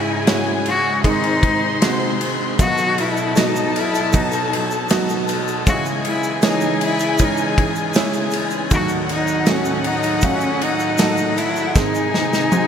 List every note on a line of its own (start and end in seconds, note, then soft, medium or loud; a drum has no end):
0.00 1.00 G#2 medium
0.00 1.04 G#2 medium
0.00 1.04 C#3 medium
0.00 0.23 G#3 medium
0.00 0.25 G#3 soft
0.00 2.57 G#3 medium
0.00 0.24 C#4 medium
0.00 0.26 C#4 soft
0.00 0.23 E4 medium
0.00 0.27 E4 medium
0.00 1.04 E4 medium
0.00 0.12 E4 medium
0.00 0.24 G#4 medium
0.00 0.27 G#4 medium
0.00 1.02 G#4 medium
0.00 1.01 G#5 loud
0.10 0.21 D#4 medium
0.19 0.28 E4 medium
0.26 1.03 G#3 medium
0.26 1.00 G#3 medium
0.26 1.00 C#4 medium
0.26 1.04 C#4 medium
0.26 1.00 E4 medium
0.26 1.04 E4 medium
0.26 1.01 F#4 medium
0.26 1.04 G#4 medium
0.26 snare loud
0.26 ride medium
0.66 1.03 F#4 loud
0.66 ride medium
1.03 1.43 G#2 medium
1.03 2.55 G#2 medium
1.03 2.58 C3 medium
1.03 1.43 D#3 medium
1.03 2.55 D#3 medium
1.03 1.43 G#3 medium
1.03 1.78 G#3 medium
1.03 1.78 C4 medium
1.03 1.42 C4 medium
1.03 1.78 D#4 medium
1.03 1.41 D#4 medium
1.03 2.58 D#4 medium
1.03 2.17 D#4 loud
1.03 1.78 G#4 medium
1.03 1.40 G#4 medium
1.03 2.56 C5 medium
1.03 2.56 C6 medium
1.03 kick medium
1.03 ride medium
1.24 ride soft
1.41 1.80 G#3 soft
1.41 1.81 D#4 medium
1.41 1.81 G#4 medium
1.41 kick medium
1.41 ride medium
1.81 2.20 G#3 medium
1.81 2.55 G#3 medium
1.81 2.55 C4 medium
1.81 2.21 C4 medium
1.81 2.55 D#4 medium
1.81 2.20 D#4 medium
1.81 2.56 F#4 medium
1.81 2.19 G#4 medium
1.81 snare loud
1.81 ride medium
2.20 2.60 G#3 medium
2.20 2.60 C4 medium
2.20 2.60 D#4 medium
2.20 2.59 G#4 medium
2.20 ride medium
2.58 5.63 B2 medium
2.58 2.98 B2 medium
2.58 5.63 B2 medium
2.58 2.98 D#3 medium
2.58 5.63 F#3 medium
2.58 3.33 F#3 medium
2.58 2.98 F#3 medium
2.58 3.33 B3 medium
2.58 2.98 B3 medium
2.58 2.99 D#4 medium
2.58 2.66 F4 medium
2.58 3.02 F#4 loud
2.58 5.63 A4 medium
2.58 2.96 B4 medium
2.58 8.67 D#5 medium
2.58 3.33 D#5 medium
2.58 5.62 A5 loud
2.58 kick loud
2.58 ride medium
2.58 shaker medium
2.67 3.35 F#4 medium
2.78 shaker medium
2.97 3.34 F#3 medium
2.97 3.35 B3 soft
2.97 3.40 E4 loud
2.97 3.36 B4 medium
2.97 ride medium
3.17 shaker medium
3.35 4.51 F#3 medium
3.35 4.10 F#3 medium
3.35 4.10 B3 medium
3.35 4.52 B3 medium
3.35 3.80 D#4 loud
3.35 4.10 F#4 medium
3.35 4.50 B4 medium
3.35 4.10 D#5 medium
3.35 snare loud
3.35 ride medium
3.35 shaker medium
3.56 shaker medium
3.76 4.17 E4 loud
3.76 ride medium
3.95 ride soft
3.95 shaker medium
4.12 4.86 F#3 medium
4.12 4.86 B3 medium
4.12 4.86 D#4 medium
4.12 4.53 D#4 medium
4.12 4.86 F#4 medium
4.12 kick medium
4.12 ride medium
4.12 shaker medium
4.32 ride soft
4.32 shaker soft
4.51 4.88 F#3 soft
4.51 4.89 B3 soft
4.51 4.90 D#4 medium
4.51 4.90 B4 medium
4.51 ride medium
4.71 shaker soft
4.89 5.28 F#3 medium
4.89 5.63 F#3 medium
4.89 5.63 B3 medium
4.89 5.29 B3 medium
4.89 5.63 D#4 medium
4.89 5.27 D#4 medium
4.89 5.63 F#4 loud
4.89 5.26 B4 medium
4.89 snare loud
4.89 ride medium
4.89 shaker medium
5.09 shaker medium
5.27 5.66 F#3 soft
5.27 5.67 B3 medium
5.27 5.66 D#4 medium
5.27 5.66 B4 medium
5.27 ride medium
5.27 shaker soft
5.48 shaker medium
5.65 8.67 C#3 medium
5.65 6.04 C#3 medium
5.65 8.68 C#3 medium
5.65 8.67 E3 medium
5.65 6.05 E3 medium
5.65 6.05 G#3 medium
5.65 6.39 G#3 medium
5.65 6.05 C#4 medium
5.65 6.40 C#4 medium
5.65 6.05 D#4 medium
5.65 6.40 E4 medium
5.65 5.85 F#4 loud
5.65 8.67 G#4 loud
5.65 6.03 G#4 medium
5.65 6.40 D#5 medium
5.65 8.67 G#5 loud
5.65 kick loud
5.65 ride medium
5.65 shaker medium
5.85 shaker medium
6.04 6.42 G#3 soft
6.04 6.42 E4 loud
6.04 6.43 G#4 medium
6.04 ride medium
6.24 shaker medium
6.42 7.16 E3 medium
6.42 7.58 G#3 medium
6.42 7.16 G#3 medium
6.42 7.16 C#4 medium
6.42 7.58 C#4 medium
6.42 7.56 G#4 medium
6.42 7.16 D#5 medium
6.42 snare loud
6.42 ride medium
6.42 shaker medium
6.46 6.80 D#4 loud
6.61 shaker medium
6.81 7.25 E4 loud
6.81 ride medium
6.99 ride soft
6.99 shaker medium
7.18 7.93 E3 medium
7.18 7.92 G#3 medium
7.18 7.92 C#4 medium
7.18 7.93 D#4 medium
7.18 kick medium
7.18 ride medium
7.18 shaker medium
7.24 7.60 D#4 medium
7.37 shaker medium
7.57 7.93 G#3 medium
7.57 7.94 C#4 medium
7.57 7.95 D#4 medium
7.57 7.95 G#4 medium
7.57 kick loud
7.57 ride medium
7.75 shaker soft
7.94 8.33 G#3 medium
7.94 8.68 G#3 loud
7.94 8.33 C#4 medium
7.94 8.68 C#4 medium
7.94 8.33 D#4 medium
7.94 8.68 D#4 medium
7.94 8.68 E4 loud
7.94 8.31 G#4 medium
7.94 snare loud
7.94 ride medium
7.94 shaker medium
8.13 shaker soft
8.31 8.72 C#4 medium
8.31 8.71 D#4 medium
8.31 8.71 G#4 medium
8.31 ride medium
8.31 shaker soft
8.35 8.71 G#3 medium
8.51 shaker soft
8.70 11.71 D#2 medium
8.70 11.72 A2 medium
8.70 9.09 D#3 medium
8.70 11.72 F#3 medium
8.70 9.43 F#3 medium
8.70 9.09 F#3 medium
8.70 9.43 A3 medium
8.70 9.43 D#4 medium
8.70 9.09 D#4 loud
8.70 9.43 F#4 medium
8.70 11.72 F#4 medium
8.70 9.09 F#4 medium
8.70 9.07 A4 medium
8.70 11.72 D#5 medium
8.70 11.72 F#5 loud
8.70 kick loud
8.70 ride medium
8.70 shaker medium
8.74 8.90 F#4 loud
8.89 shaker medium
9.08 9.46 D#4 soft
9.08 9.51 D#4 loud
9.08 9.47 F#4 medium
9.08 9.47 A4 medium
9.08 ride medium
9.27 shaker medium
9.46 10.60 F#3 medium
9.46 10.19 F#3 medium
9.46 10.19 A3 medium
9.46 9.88 C#4 loud
9.46 10.62 D#4 medium
9.46 10.19 D#4 medium
9.46 10.19 F#4 medium
9.46 10.60 F#4 medium
9.46 10.59 A4 medium
9.46 snare loud
9.46 ride medium
9.46 shaker medium
9.65 shaker medium
9.84 10.25 D#4 loud
9.84 ride medium
10.03 ride soft
10.03 shaker medium
10.22 10.95 F#3 medium
10.22 10.95 A3 medium
10.22 10.64 C#4 loud
10.22 10.95 D#4 medium
10.22 10.29 F4 medium
10.22 kick medium
10.22 ride medium
10.22 shaker medium
10.30 10.99 F#4 medium
10.41 shaker medium
10.60 11.40 D#4 loud
10.60 10.97 D#4 medium
10.60 10.98 F#4 medium
10.60 10.99 A4 medium
10.60 ride medium
10.80 shaker soft
10.97 11.37 F#3 medium
10.97 11.72 F#3 medium
10.97 11.72 A3 medium
10.97 11.37 D#4 medium
10.97 11.37 F#4 medium
10.97 11.35 A4 medium
10.97 11.72 A4 loud
10.97 11.72 D#5 medium
10.97 snare loud
10.97 ride medium
10.97 shaker medium
11.17 shaker medium
11.36 11.78 E4 loud
11.36 11.75 F#4 medium
11.36 11.75 A4 medium
11.36 ride medium
11.36 shaker soft
11.56 shaker soft
11.74 12.13 G#2 medium
11.74 12.67 G#2 medium
11.74 12.67 C3 medium
11.74 12.13 D#3 medium
11.74 12.67 D#3 medium
11.74 12.67 G#3 medium
11.74 12.48 G#3 medium
11.74 12.14 G#3 medium
11.74 12.48 C4 medium
11.74 12.13 C4 medium
11.74 12.67 D#4 medium
11.74 12.13 D#4 medium
11.74 12.48 D#4 medium
11.74 12.67 D#4 loud
11.74 12.67 G#4 loud
11.74 12.48 G#4 medium
11.74 12.11 G#4 medium
11.74 12.67 G#5 loud
11.74 kick loud
11.74 snare medium
11.74 shaker medium
11.95 shaker medium
12.13 12.49 G#3 soft
12.13 12.51 C4 medium
12.13 12.52 D#4 medium
12.13 12.51 G#4 medium
12.13 snare medium
12.33 snare medium
12.33 shaker medium
12.50 12.67 G#3 medium
12.50 12.67 C4 medium
12.50 12.67 D#4 medium
12.50 12.67 F#4 medium
12.50 12.67 G#4 medium
12.50 high tom medium
12.50 shaker medium